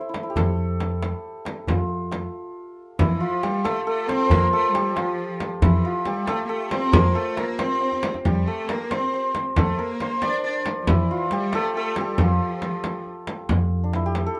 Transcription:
Already playing: santur G4 A4 C5
0.01 santur E4
0.09 santur E4
0.14 santur E4, tombak tek, frame drum
0.23 santur E4
0.30 santur G4
0.36 upright bass F2, santur A4, tombak dum, frame drum
0.59 tombak ka
0.80 tombak tek, frame drum
1.02 tombak tek, frame drum
1.45 tombak tek, frame drum
1.67 upright bass F2, santur F4, tombak dum, frame drum
1.89 tombak ka
2.12 tombak tek, frame drum
2.99 upright bass F2, cello section E3, santur E4, frame drum, tombak dum
3.20 cello section F3, santur F4, tombak ka
3.43 cello section G3, santur G4, tombak tek, frame drum
3.64 cello section A3, santur A4, tombak tek, frame drum
3.87 cello section A3, santur A4
4.08 cello section C4, santur C5, tombak tek, frame drum
4.26 santur C5
4.30 upright bass F2, cello section A#3, santur A#4, tombak dum, frame drum
4.53 cello section A3, santur A4, tombak ka
4.73 cello section G3, santur G4, tombak tek, frame drum
4.96 cello section F3, santur F4, tombak tek, frame drum
5.40 tombak tek, frame drum
5.62 upright bass F2, cello section E3, santur E4, tombak dum, frame drum
5.83 cello section F3, santur F4, tombak ka
6.05 cello section G3, santur G4, tombak tek, frame drum
6.27 cello section A3, santur A4, tombak tek, frame drum
6.44 cello section A#3
6.49 cello section A3, santur A4
6.71 cello section C4, santur C5, tombak tek, frame drum
6.92 upright bass F2, cello section A#3, santur A#4, tombak dum, frame drum
7.14 cello section A3, santur A4
7.37 cello section A#3, santur A#4, tombak tek, frame drum
7.59 cello section C4, santur C5, tombak tek, frame drum
7.81 tombak tek
7.92 tombak ka
8.03 tombak tek, frame drum
8.14 tombak ka
8.25 upright bass F2, cello section G3, santur G4, frame drum, tombak dum
8.47 cello section A3, santur A4, tombak ka
8.67 cello section A#3, santur A#4, tombak tek, frame drum
8.91 cello section C4, santur C5, tombak tek, frame drum
9.14 santur C5
9.35 tombak tek, frame drum
9.56 upright bass F2, cello section A3, santur A4, frame drum, tombak dum
9.78 cello section A#3, santur A#4, tombak ka
10.00 santur C5, tombak tek, frame drum
10.22 cello section D4, santur D5, tombak tek, frame drum
10.43 cello section D4, santur D5
10.66 tombak tek, frame drum
10.81 cello section F3
10.87 upright bass F2, cello section E3, santur E4, frame drum, tombak dum
11.10 santur F4, tombak ka
11.31 cello section G3, santur G4, frame drum
11.52 cello section A3, santur A4, tombak tek, frame drum
11.74 cello section A3, santur A4
11.94 cello section G3, tombak tek, frame drum
12.01 santur G4
12.17 upright bass F2, cello section F3, santur F4, frame drum, tombak dum
12.41 tombak ka
12.62 tombak tek, frame drum
12.84 tombak tek, frame drum
13.06 tombak ka
13.27 tombak tek, frame drum
13.49 upright bass F2, frame drum, tombak dum
13.72 tombak ka
13.84 santur D4
13.93 santur E4, tombak tek, frame drum
14.06 santur G4
14.15 tombak tek, frame drum
14.26 santur A4
14.35 santur A4

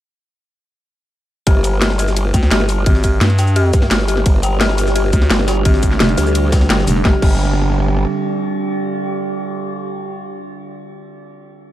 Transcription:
1.47 wobble bass G1, synth bell G4, ambient pad G4, kick, closed hi-hat, ride
1.64 closed hi-hat, ride, shaker
1.82 synth bell G4, snare, closed hi-hat, ride
1.90 snare
1.99 synth bell G4, open hi-hat, ride, shaker
2.05 ambient pad D5, snare, shaker
2.15 ambient pad G5, closed hi-hat, ride
2.34 fm bass D2, synth bell G5, kick, closed hi-hat, ride, shaker
2.43 snare
2.51 wobble bass G1, synth bell G4, snare, closed hi-hat, ride
2.60 snare
2.69 open hi-hat, ride, shaker
2.86 fm bass G#1, synth bell G4, kick, closed hi-hat, ride
2.95 snare
3.04 synth bell G4, kick, closed hi-hat, ride, shaker
3.21 fm bass G2, snare, closed hi-hat, ride
3.30 snare, ride
3.39 synth bell G5, snare, open hi-hat, ride, shaker
3.47 shaker
3.56 synth bell G4, closed hi-hat, ride
3.73 wobble bass G2, kick, closed hi-hat, ride, shaker
3.82 snare
3.91 wobble bass G1, synth bell G4, snare, closed hi-hat, ride
4.00 snare
4.08 synth bell G4, open hi-hat, ride, shaker
4.17 snare
4.26 wobble bass G1, synth drone D3 G3 D4, kick, closed hi-hat, ride
4.37 ambient pad F5
4.43 synth bell G5, closed hi-hat, ride, shaker
4.61 synth bell G4, snare, closed hi-hat, ride
4.69 snare
4.78 open hi-hat, ride, shaker
4.87 snare, shaker
4.96 synth bell G4, closed hi-hat, ride
5.13 fm bass D2, synth bell G4, kick, closed hi-hat, ride, shaker
5.22 snare
5.30 wobble bass G1, snare, closed hi-hat, ride
5.39 snare
5.48 synth bell G5, snare, open hi-hat, ride, shaker
5.65 fm bass G#1, synth bell G4, kick, closed hi-hat, ride
5.74 snare
5.83 kick, closed hi-hat, ride, shaker
5.91 snare
6.00 fm bass F1, synth bell G4, snare, closed hi-hat, ride
6.09 snare, ride
6.18 wobble bass D2, synth bell G4, snare, open hi-hat, ride, shaker
6.26 shaker
6.35 closed hi-hat, ride
6.52 synth bell G5, kick, snare, closed hi-hat, ride, shaker
6.61 snare
6.70 wobble bass G1, synth bell G5, snare, closed hi-hat, ride
6.79 snare
6.87 fm bass F1, open hi-hat, ride, shaker
6.96 snare
7.05 wobble bass G1, synth drone D3 G3 G4 D5, synth bell G4, ambient pad G4, kick, snare
7.10 ambient pad D5
7.16 ambient pad G5
7.22 wobble bass G1, synth bell G4, kick, crash

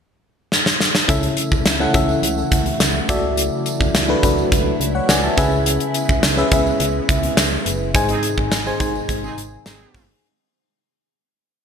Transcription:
0.52 snare
0.66 snare
0.80 snare
0.95 snare
1.08 fm bass C#2, fm electric piano C#3 C#4 E4 A4 E5, string machine C#3 E3 A3 E4, kick, closed hi-hat, tambourine
1.23 closed hi-hat
1.37 closed hi-hat, tambourine
1.52 fm bass C#2, kick, tambourine
1.66 fm bass C#2, snare, closed hi-hat, tambourine
1.80 fm electric piano C#4 E4 A4 F#5
1.94 fm bass C#2, fm electric piano C#4 E4 A4 E5, kick, closed hi-hat, tambourine
2.09 tambourine
2.23 fm bass C#2, closed hi-hat, tambourine
2.38 tambourine
2.51 fm bass C#2, kick, closed hi-hat, tambourine
2.66 closed hi-hat
2.80 fm bass C#2, snare, closed hi-hat, tambourine
3.09 fm bass C#2, fm electric piano C#3 F#4 A4 D5 E5, string machine E3 F#3 A3 E4, kick, closed hi-hat, tambourine
3.37 closed hi-hat, tambourine
3.66 closed hi-hat, tambourine
3.80 fm bass C#2, kick, tambourine
3.95 fm bass C#2, snare, closed hi-hat, tambourine
4.08 fm electric piano D4 F#4 A4 B4
4.23 fm bass C#2, fm electric piano D4 F#4 A4 B4, kick, closed hi-hat, tambourine
4.38 tambourine
4.52 fm bass C#2, kick, closed hi-hat, tambourine
4.80 fm bass C#2, closed hi-hat, tambourine
4.95 fm electric piano C#5 F#5
5.09 fm bass C#2, fm electric piano D5 F#5 G#5, snare, closed hi-hat, tambourine
5.24 fm electric piano E5 A5
5.37 fm bass C#2, fm electric piano C#3 C#4 G#4 B4 E5 G#5, string machine C#3 G#3 B3, kick, closed hi-hat, tambourine
5.52 tambourine
5.66 closed hi-hat, tambourine
5.80 closed hi-hat
5.94 closed hi-hat, tambourine
6.09 fm bass C#2, kick, tambourine
6.23 fm bass C#2, snare, closed hi-hat, tambourine
6.37 fm electric piano C#4 G#4 B4 E5
6.51 fm bass C#2, fm electric piano C#4 G#4 B4 E5, kick, closed hi-hat, tambourine
6.67 tambourine
6.80 fm bass C#2, closed hi-hat, tambourine
7.09 fm bass C#2, kick, closed hi-hat, tambourine
7.23 closed hi-hat
7.37 fm bass C#2, snare, closed hi-hat, tambourine
7.66 fm bass F#1, closed hi-hat, tambourine
7.94 fm bass G#1, fm electric piano G#2 D#4 G#4 C5 G#5, string machine C3 D#3 G#3 D#4, kick, closed hi-hat, tambourine
8.09 analog polysynth C4 D#4 G#4, closed hi-hat
8.23 closed hi-hat, tambourine
8.37 fm bass G#1, kick
8.51 fm bass G#1, snare, closed hi-hat, tambourine
8.66 fm electric piano D#4 G#4 C5 G#5
8.80 fm bass G#1, fm electric piano D#4 G#4 C5 G#5, kick, closed hi-hat, tambourine
8.95 tambourine
9.09 fm bass G#1, kick, closed hi-hat, tambourine
9.24 analog polysynth C4 D#4 G#4, tambourine
9.38 fm bass G#1, closed hi-hat, tambourine
9.66 fm bass G#1, analog polysynth C4 D#4 G#4, snare, closed hi-hat, tambourine
9.95 fm bass G1, kick, open hi-hat, tambourine

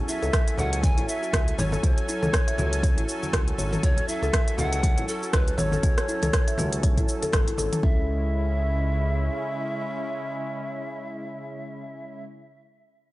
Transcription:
Already playing: analog synth pad F#3 C#4 A4 G#5
0.08 kalimba E4, pan flute E5, cabasa
0.22 analog synth bass C#2, kalimba A4, muted conga, cabasa
0.33 kick, cross-stick, closed hi-hat, cabasa
0.48 kalimba E5, closed hi-hat
0.58 analog synth bass C#2, kalimba F#4, pan flute F#5, muted conga, high conga, low conga, cabasa
0.73 closed hi-hat, cabasa
0.83 kalimba C#5, pan flute G#5, kick, closed hi-hat, high conga, cabasa
0.98 analog synth bass G#1, kalimba E4, closed hi-hat, muted conga
1.08 pan flute E5, cabasa
1.23 kalimba F#4, cabasa
1.33 analog synth bass C#2, kick, cross-stick, closed hi-hat, muted conga, cabasa
1.48 closed hi-hat
1.58 analog synth bass G#1, kalimba C#5, pan flute C#5, mid tom, low conga, cabasa
1.72 kalimba A4, high conga, cabasa
1.83 analog synth bass C#2, kalimba F#4, pan flute C5, kick, closed hi-hat, muted conga, high conga, cabasa
1.95 pan flute C#5, closed hi-hat
2.09 kalimba E4, cabasa
2.22 analog synth bass C#2, kalimba A4, mid tom, muted conga, cabasa
2.33 kick, cross-stick, closed hi-hat, cabasa
2.48 kalimba E5, closed hi-hat
2.58 analog synth bass C#2, kalimba F#4, muted conga, high conga, low conga, cabasa
2.73 closed hi-hat, cabasa
2.83 kalimba C#5, kick, closed hi-hat, cabasa
2.97 analog synth bass G#1, kalimba E4, closed hi-hat, muted conga
3.09 cabasa
3.23 kalimba F#4, high conga, cabasa
3.33 analog synth bass C#2, kalimba F#4, kick, cross-stick, closed hi-hat, muted conga, cabasa
3.48 closed hi-hat
3.58 analog synth bass G#1, kalimba C#5, high conga, cabasa
3.73 kalimba A4, mid tom, cabasa
3.83 analog synth bass C#2, kalimba F#4, pan flute C#5, kick, closed hi-hat, muted conga, high conga, cabasa
3.97 closed hi-hat, low conga
4.08 kalimba E4, pan flute E5, cabasa
4.22 analog synth bass C#2, kalimba A4, muted conga, cabasa
4.33 kick, cross-stick, closed hi-hat, cabasa
4.48 kalimba E5, closed hi-hat
4.58 analog synth bass C#2, kalimba F#4, pan flute F#5, muted conga, high conga, low conga, cabasa
4.73 closed hi-hat, cabasa
4.83 kalimba C#5, kick, closed hi-hat, high conga, cabasa
4.98 analog synth bass G#1, kalimba E4, closed hi-hat, muted conga
5.08 pan flute A4, cabasa
5.23 kalimba F#4, cabasa
5.33 analog synth bass C#2, pan flute B4, kick, cross-stick, closed hi-hat, muted conga, cabasa
5.48 closed hi-hat
5.58 analog synth bass G#1, pan flute C#5, kalimba C#5, mid tom, low conga, cabasa
5.72 kalimba A4, high conga, cabasa
5.83 analog synth bass C#2, kalimba F#4, kick, closed hi-hat, muted conga, high conga, cabasa
5.98 cross-stick, closed hi-hat
6.08 kalimba E4, cabasa
6.22 analog synth bass C#2, kalimba A4, closed hi-hat, mid tom, muted conga, cabasa
6.33 kick, cross-stick, closed hi-hat, cabasa
6.48 kalimba E5, closed hi-hat, cabasa
6.58 analog synth bass C#2, kalimba F#4, mid tom, muted conga, high conga, low conga, cabasa
6.73 closed hi-hat, cabasa
6.83 kalimba C#5, kick, closed hi-hat, low conga, cabasa
6.98 analog synth bass G#1, kalimba E4, kick, closed hi-hat, muted conga, cabasa
7.09 cabasa
7.23 kalimba A4, closed hi-hat, high conga, cabasa
7.33 analog synth bass G#1, kalimba A4, kick, cross-stick, closed hi-hat, muted conga, cabasa
7.48 kalimba E4, closed hi-hat
7.58 analog synth bass G#1, kalimba A4, high conga, cabasa
7.72 kalimba C#4, closed hi-hat, mid tom, cabasa
7.83 analog synth bass C#2, analog synth pad C#3 G#3 C#4 E4, kalimba C#4, pan flute E5, kick

